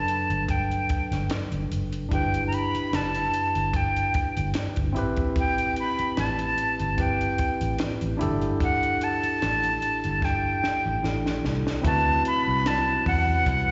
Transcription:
0.00 2.07 F#3 soft
0.00 2.06 D4 soft
0.00 2.08 A4 soft
0.00 2.13 B4 medium
0.00 0.52 A5 medium
0.08 closed hi-hat medium
0.30 0.79 G1 medium
0.30 closed hi-hat soft
0.48 1.31 G5 medium
0.48 kick medium
0.48 closed hi-hat medium
0.71 closed hi-hat soft
0.89 muted fingered electric bass stroke soft
0.89 kick medium
0.89 closed hi-hat medium
1.11 1.27 G1 medium
1.11 snare soft
1.11 closed hi-hat soft
1.30 snare medium
1.30 closed hi-hat medium
1.52 1.67 G1 medium
1.52 closed hi-hat soft
1.71 2.05 F#1 medium
1.71 closed hi-hat medium
1.92 closed hi-hat soft
2.09 2.64 G1 medium
2.09 4.90 D4 medium
2.09 4.91 E4 soft
2.09 4.92 G4 soft
2.09 kick loud
2.09 closed hi-hat medium
2.13 4.93 B4 medium
2.13 2.44 G5 medium
2.34 closed hi-hat soft
2.47 2.56 A#5 medium
2.52 2.97 B5 medium
2.52 closed hi-hat medium
2.74 muted fingered electric bass stroke soft
2.74 closed hi-hat soft
2.93 3.27 F#1 medium
2.93 3.78 A5 medium
2.93 snare medium
2.93 closed hi-hat medium
3.15 closed hi-hat soft
3.34 closed hi-hat medium
3.55 4.05 G1 medium
3.55 closed hi-hat soft
3.73 4.56 G5 medium
3.73 kick medium
3.73 closed hi-hat medium
3.96 closed hi-hat soft
4.14 muted fingered electric bass stroke soft
4.14 kick medium
4.14 closed hi-hat medium
4.37 4.52 G1 medium
4.37 closed hi-hat soft
4.54 snare medium
4.54 closed hi-hat medium
4.76 4.96 G1 medium
4.76 kick medium
4.76 closed hi-hat soft
4.93 5.82 A1 medium
4.93 6.93 C4 medium
4.93 6.94 E4 medium
4.93 6.95 G4 medium
4.93 closed hi-hat medium
4.98 6.96 B4 medium
5.16 kick medium
5.16 closed hi-hat soft
5.36 5.76 G5 medium
5.36 kick loud
5.36 closed hi-hat medium
5.58 closed hi-hat soft
5.76 6.16 B5 loud
5.76 closed hi-hat soft
5.99 muted fingered electric bass stroke soft
5.99 closed hi-hat soft
6.17 6.52 A1 medium
6.17 6.95 A5 medium
6.17 snare medium
6.17 closed hi-hat medium
6.39 closed hi-hat soft
6.58 closed hi-hat medium
6.80 7.29 G1 medium
6.80 closed hi-hat soft
6.97 8.19 C4 soft
6.97 8.18 E4 soft
6.97 8.19 G4 soft
6.97 8.21 B4 soft
6.97 7.77 G5 medium
6.97 kick medium
6.97 closed hi-hat medium
7.21 closed hi-hat soft
7.38 muted fingered electric bass stroke soft
7.38 kick medium
7.38 closed hi-hat medium
7.61 7.77 A1 medium
7.61 closed hi-hat soft
7.79 snare medium
7.79 closed hi-hat medium
8.01 8.22 A1 medium
8.01 closed hi-hat soft
8.17 9.06 G1 medium
8.17 10.98 D4 medium
8.17 10.99 E4 medium
8.17 11.00 G4 medium
8.17 closed hi-hat medium
8.23 11.01 A4 medium
8.41 closed hi-hat soft
8.60 9.05 F#5 loud
8.60 kick medium
8.60 closed hi-hat medium
8.83 closed hi-hat soft
9.01 10.26 A5 loud
9.01 closed hi-hat medium
9.23 muted fingered electric bass stroke soft
9.23 closed hi-hat soft
9.42 9.76 A1 medium
9.42 snare medium
9.42 closed hi-hat medium
9.63 closed hi-hat soft
9.82 closed hi-hat medium
10.04 10.54 G1 medium
10.04 closed hi-hat soft
10.22 11.45 G5 medium
10.22 kick medium
10.22 snare soft
10.64 muted fingered electric bass stroke soft
10.64 snare medium
10.86 11.01 A1 medium
11.02 11.38 A1 medium
11.02 11.84 D4 soft
11.02 11.82 E4 soft
11.02 11.85 G4 soft
11.02 11.85 A4 soft
11.02 snare medium
11.26 snare medium
11.45 11.63 C2 medium
11.45 snare medium
11.67 snare medium
11.81 12.18 D2 loud
11.81 13.71 C3 medium
11.81 13.71 F#3 medium
11.81 13.71 C4 medium
11.81 13.71 E4 medium
11.81 13.71 B4 medium
11.81 kick loud
11.81 closed hi-hat medium
11.85 13.71 F#4 medium
11.85 13.71 B4 medium
11.85 12.23 A5 loud
12.25 12.69 B5 loud
12.25 closed hi-hat medium
12.48 12.97 C2 medium
12.66 13.07 A5 loud
12.66 snare loud
12.66 closed hi-hat medium
13.06 13.40 E2 medium
13.06 13.71 F#5 loud
13.06 kick medium
13.06 open hi-hat soft
13.46 13.71 C2 medium
13.46 kick medium
13.46 closed hi-hat medium

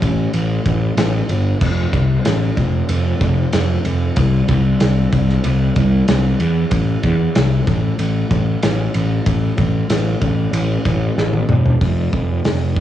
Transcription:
0.02 0.26 A1 medium
0.02 kick medium
0.02 ride medium
0.33 0.58 A1 medium
0.33 ride medium
0.66 0.90 A1 medium
0.66 kick medium
0.66 ride medium
0.97 1.21 A1 medium
0.97 snare loud
0.97 ride loud
1.29 1.53 G1 medium
1.29 ride medium
1.61 1.85 F1 medium
1.61 kick loud
1.61 crash medium
1.93 2.17 C2 medium
1.93 kick medium
1.93 ride medium
2.25 2.49 A1 medium
2.25 snare loud
2.25 ride medium
2.57 2.81 F1 medium
2.57 kick medium
2.57 ride medium
2.89 3.13 F1 medium
2.89 ride medium
3.21 3.45 F1 medium
3.21 kick medium
3.21 ride medium
3.53 3.77 F1 medium
3.53 snare loud
3.53 ride loud
3.85 4.09 F1 medium
3.85 ride medium
4.16 4.41 C2 loud
4.16 kick loud
4.16 ride loud
4.48 4.73 C2 medium
4.48 kick medium
4.48 ride medium
4.80 5.05 C2 medium
4.80 snare loud
4.80 ride loud
5.12 5.36 C2 medium
5.12 kick medium
5.12 ride medium
5.29 snare soft
5.44 5.68 C2 medium
5.44 ride medium
5.76 6.00 C2 medium
5.76 kick medium
5.76 ride medium
6.08 6.32 C2 loud
6.08 snare loud
6.08 ride loud
6.40 6.64 E2 medium
6.40 ride medium
6.71 6.95 A1 medium
6.71 kick loud
6.71 ride medium
7.03 7.28 E2 medium
7.03 kick medium
7.03 ride medium
7.35 7.59 C2 medium
7.35 snare loud
7.35 ride medium
7.67 7.91 A1 medium
7.67 kick medium
7.67 ride medium
7.99 8.23 A1 medium
7.99 ride medium
8.31 8.55 A1 medium
8.31 kick medium
8.31 ride medium
8.63 8.87 A1 loud
8.63 snare loud
8.63 ride loud
8.94 9.19 A1 medium
8.94 ride medium
9.26 9.50 A1 medium
9.26 kick loud
9.26 ride loud
9.58 9.82 A1 medium
9.58 kick medium
9.58 ride medium
9.90 10.14 A1 medium
9.90 snare loud
9.90 ride loud
10.21 10.45 A1 medium
10.21 kick medium
10.21 ride medium
10.53 10.77 A1 medium
10.53 ride medium
10.85 11.09 A1 medium
10.85 kick medium
10.85 ride medium
11.18 11.41 A1 medium
11.18 snare medium
11.33 high tom medium
11.49 11.73 E1 medium
11.49 mid tom medium
11.66 floor tom medium
11.81 12.07 F1 medium
11.81 kick loud
11.81 open hi-hat soft
12.13 12.39 F1 medium
12.13 kick medium
12.45 12.80 F1 medium
12.45 snare loud
12.45 open hi-hat medium
12.76 kick medium

